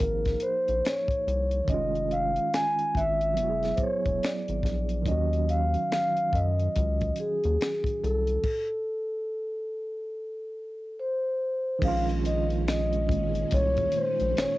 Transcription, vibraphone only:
0.00 0.44 A#4 medium
0.42 0.85 C5 medium
0.85 1.64 C#5 medium
1.69 2.12 D#5 medium
2.12 2.50 F5 medium
2.54 2.97 G#5 medium
2.97 3.77 E5 medium
3.75 3.80 C5 medium
3.81 4.24 C#5 medium
4.24 5.09 D5 medium
5.08 5.50 D#5 medium
5.50 5.92 F5 medium
5.93 6.35 F5 medium
6.34 7.14 D#5 medium
7.20 8.05 G#4 medium
8.04 10.94 A4 medium
11.00 11.79 C5 medium
11.85 12.03 F5 medium
12.26 12.45 D#5 medium
12.68 13.54 D#5 medium
13.54 13.96 C#5 medium
13.96 14.38 C5 medium
14.38 14.58 C#5 medium

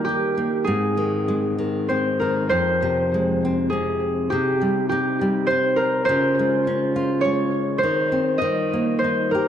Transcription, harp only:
0.00 1.30 A#4 medium
0.05 0.70 G4 medium
0.64 2.92 G#4 medium
1.89 2.49 C5 medium
2.20 4.32 A#4 medium
2.49 4.47 C5 medium
3.70 4.36 G#4 medium
4.30 4.89 G4 medium
4.89 7.25 G4 medium
5.47 6.05 C5 medium
5.76 7.88 A#4 medium
6.05 7.78 C5 medium
7.21 7.84 C#5 medium
7.78 8.98 C5 medium
8.38 9.48 D#5 medium
8.99 9.48 C5 medium
9.31 9.48 A#4 medium

